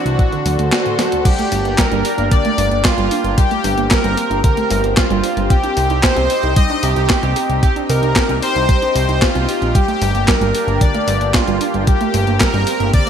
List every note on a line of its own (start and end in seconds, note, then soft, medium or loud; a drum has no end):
0.00 0.18 E3 medium
0.00 0.18 C4 medium
0.00 1.23 D4 medium
0.00 0.68 F#4 medium
0.06 0.17 C2 medium
0.06 0.15 E4 medium
0.06 closed hi-hat medium
0.19 0.25 A2 medium
0.19 1.24 D3 medium
0.19 1.24 F#4 medium
0.19 1.24 A4 medium
0.19 1.24 C5 medium
0.19 kick loud
0.19 closed hi-hat medium
0.32 0.38 D3 loud
0.32 closed hi-hat soft
0.45 0.57 D2 medium
0.45 0.51 F#3 medium
0.45 open hi-hat loud
0.59 0.71 D2 medium
0.59 0.68 A3 medium
0.59 closed hi-hat medium
0.72 0.85 D3 medium
0.72 1.27 F#4 medium
0.72 snare loud
0.72 clap loud
0.72 closed hi-hat medium
0.86 0.95 A2 medium
0.86 closed hi-hat soft
0.99 1.04 F#3 medium
0.99 snare medium
0.99 open hi-hat loud
1.12 1.18 D2 loud
1.12 closed hi-hat medium
1.25 1.31 G3 medium
1.25 5.46 A#3 medium
1.25 3.36 D4 medium
1.25 1.80 G4 loud
1.25 13.10 G4 medium
1.25 kick loud
1.25 closed hi-hat loud
1.25 crash loud
1.39 1.44 A3 loud
1.39 closed hi-hat soft
1.52 1.64 G1 medium
1.52 1.61 G3 medium
1.52 open hi-hat loud
1.65 1.77 G1 medium
1.65 1.78 A#3 medium
1.65 closed hi-hat soft
1.78 1.88 G3 medium
1.78 2.33 A#4 loud
1.78 kick loud
1.78 snare loud
1.78 clap loud
1.78 closed hi-hat loud
1.91 2.03 G1 medium
1.91 2.05 G3 loud
1.91 closed hi-hat soft
2.05 2.14 G4 medium
2.05 open hi-hat loud
2.18 2.30 G1 medium
2.18 2.27 A#3 medium
2.18 closed hi-hat soft
2.31 2.37 D3 medium
2.31 2.86 D5 loud
2.31 kick loud
2.31 closed hi-hat medium
2.45 2.50 A3 loud
2.45 closed hi-hat soft
2.58 2.70 G1 loud
2.58 2.67 G3 medium
2.58 open hi-hat loud
2.71 2.83 G1 medium
2.71 2.84 A#3 medium
2.71 closed hi-hat soft
2.85 2.94 G3 medium
2.85 3.39 F4 medium
2.85 kick loud
2.85 snare loud
2.85 clap loud
2.85 closed hi-hat medium
2.98 3.10 G1 medium
2.98 3.11 G3 loud
2.98 closed hi-hat soft
3.11 3.20 D4 loud
3.11 open hi-hat loud
3.24 3.36 G1 medium
3.24 3.34 G3 medium
3.24 closed hi-hat soft
3.38 3.43 G3 medium
3.38 9.71 C4 medium
3.38 3.92 G4 loud
3.38 kick loud
3.38 closed hi-hat medium
3.51 3.56 A3 loud
3.51 closed hi-hat soft
3.64 3.76 G1 medium
3.64 3.73 G3 medium
3.64 open hi-hat loud
3.77 3.89 G1 medium
3.77 3.90 A#3 medium
3.77 closed hi-hat soft
3.91 4.00 G3 medium
3.91 4.40 A#4 loud
3.91 kick loud
3.91 snare loud
3.91 clap loud
3.91 closed hi-hat medium
4.04 4.16 G1 medium
4.04 4.17 G3 loud
4.04 closed hi-hat soft
4.17 4.26 G4 medium
4.17 open hi-hat loud
4.30 4.42 G1 medium
4.30 4.40 A#3 medium
4.30 closed hi-hat soft
4.44 4.49 D3 medium
4.44 4.93 A#4 loud
4.44 kick loud
4.44 closed hi-hat medium
4.57 4.63 A3 loud
4.57 closed hi-hat soft
4.70 4.82 G1 loud
4.70 4.80 G3 medium
4.70 open hi-hat loud
4.84 4.95 G1 medium
4.84 4.97 A#3 medium
4.84 closed hi-hat soft
4.97 5.06 G3 medium
4.97 5.52 F4 loud
4.97 kick loud
4.97 snare loud
4.97 clap loud
4.97 closed hi-hat loud
5.10 5.22 G1 medium
5.10 5.23 G3 loud
5.10 closed hi-hat soft
5.24 5.33 D4 loud
5.24 open hi-hat loud
5.37 5.49 G1 medium
5.37 5.46 G3 medium
5.37 closed hi-hat soft
5.50 5.56 C4 medium
5.50 9.71 D#4 medium
5.50 6.05 G4 loud
5.50 kick loud
5.50 closed hi-hat medium
5.63 5.69 D4 loud
5.63 closed hi-hat soft
5.77 5.88 C2 medium
5.77 5.86 C4 medium
5.77 open hi-hat loud
5.90 6.02 C2 medium
5.90 6.03 D#4 medium
5.90 closed hi-hat soft
6.03 6.12 C4 medium
6.03 6.58 C5 loud
6.03 kick loud
6.03 snare loud
6.03 clap loud
6.03 closed hi-hat medium
6.17 6.28 C2 medium
6.17 6.29 C4 loud
6.17 closed hi-hat soft
6.30 6.39 C5 medium
6.30 open hi-hat loud
6.43 6.55 C2 medium
6.43 6.52 D#4 medium
6.43 closed hi-hat soft
6.56 6.62 G3 medium
6.56 6.84 D#5 loud
6.56 kick loud
6.56 closed hi-hat medium
6.70 6.75 D4 loud
6.70 closed hi-hat soft
6.83 6.95 C2 loud
6.83 6.92 C4 medium
6.83 7.62 G4 loud
6.83 open hi-hat loud
6.96 7.08 C2 medium
6.96 7.09 D#4 medium
6.96 closed hi-hat soft
7.10 7.19 C4 medium
7.10 kick loud
7.10 snare loud
7.10 clap loud
7.10 closed hi-hat medium
7.23 7.35 C2 medium
7.23 7.36 C4 loud
7.23 closed hi-hat soft
7.36 7.45 G4 loud
7.36 open hi-hat loud
7.50 7.61 C2 medium
7.50 7.58 C4 medium
7.50 closed hi-hat soft
7.63 7.68 C4 medium
7.63 7.75 G4 loud
7.63 kick loud
7.63 closed hi-hat medium
7.76 7.81 D4 loud
7.76 closed hi-hat soft
7.89 8.01 C2 medium
7.89 7.98 C4 medium
7.89 8.39 A#4 loud
7.89 open hi-hat loud
8.02 8.14 C2 medium
8.02 8.15 D#4 medium
8.02 closed hi-hat soft
8.16 8.25 C4 medium
8.16 kick loud
8.16 snare loud
8.16 clap loud
8.16 closed hi-hat medium
8.29 8.41 C2 medium
8.29 8.42 C4 loud
8.29 closed hi-hat soft
8.42 8.51 C5 medium
8.42 9.24 C5 loud
8.42 open hi-hat loud
8.55 8.67 C2 medium
8.55 8.64 D#4 medium
8.55 closed hi-hat soft
8.69 8.74 G3 medium
8.69 kick loud
8.69 closed hi-hat medium
8.82 8.87 D4 loud
8.82 closed hi-hat soft
8.95 9.07 C2 loud
8.95 9.04 C4 medium
8.95 open hi-hat loud
9.08 9.20 C2 medium
9.08 9.21 D#4 medium
9.08 closed hi-hat soft
9.22 9.31 C4 medium
9.22 9.77 F4 medium
9.22 kick loud
9.22 snare loud
9.22 clap loud
9.22 closed hi-hat medium
9.35 9.47 C2 medium
9.35 9.48 C4 loud
9.35 closed hi-hat soft
9.48 9.57 G4 loud
9.48 open hi-hat loud
9.61 9.73 A#1 medium
9.61 9.70 C4 medium
9.61 closed hi-hat soft
9.75 9.80 G3 medium
9.75 13.10 A#3 medium
9.75 11.85 D4 medium
9.75 10.30 G4 loud
9.75 kick loud
9.75 closed hi-hat medium
9.88 9.94 A3 loud
9.88 closed hi-hat soft
10.02 10.13 G1 medium
10.02 10.10 G3 medium
10.02 open hi-hat loud
10.15 10.26 G1 medium
10.15 10.27 A#3 medium
10.15 closed hi-hat soft
10.28 10.37 G3 medium
10.28 10.83 A#4 loud
10.28 kick loud
10.28 snare loud
10.28 clap loud
10.28 closed hi-hat medium
10.41 10.53 G1 medium
10.41 10.54 G3 loud
10.41 closed hi-hat soft
10.54 10.63 G4 medium
10.54 open hi-hat loud
10.68 10.79 G1 medium
10.68 10.77 A#3 medium
10.68 closed hi-hat soft
10.81 10.87 D3 medium
10.81 11.36 D5 loud
10.81 kick loud
10.81 closed hi-hat medium
10.95 11.00 A3 loud
10.95 closed hi-hat soft
11.08 11.19 G1 loud
11.08 11.17 G3 medium
11.08 open hi-hat loud
11.21 11.33 G1 medium
11.21 11.34 A#3 medium
11.21 closed hi-hat soft
11.34 11.43 G3 medium
11.34 11.84 F4 medium
11.34 kick loud
11.34 snare loud
11.34 clap loud
11.34 closed hi-hat medium
11.47 11.59 G1 medium
11.47 11.60 G3 loud
11.47 closed hi-hat soft
11.61 11.70 D4 medium
11.61 open hi-hat loud
11.74 11.86 G1 medium
11.74 11.83 G3 medium
11.74 closed hi-hat soft
11.87 11.93 G3 medium
11.87 13.10 C4 medium
11.87 12.42 G4 loud
11.87 kick loud
11.87 closed hi-hat medium
12.01 12.06 A3 loud
12.01 closed hi-hat soft
12.14 12.26 G1 medium
12.14 12.23 G3 medium
12.14 open hi-hat loud
12.27 12.39 G1 medium
12.27 12.40 A#3 medium
12.27 closed hi-hat soft
12.40 12.49 G3 medium
12.40 12.90 A#4 loud
12.40 kick loud
12.40 snare loud
12.40 clap loud
12.40 closed hi-hat medium
12.54 12.65 G1 medium
12.54 12.66 G3 loud
12.54 closed hi-hat soft
12.67 12.76 G4 medium
12.67 open hi-hat loud
12.80 12.92 G1 medium
12.80 12.89 A#3 medium
12.80 closed hi-hat soft
12.94 12.99 D3 medium
12.94 13.10 D5 loud
12.94 kick loud
12.94 closed hi-hat medium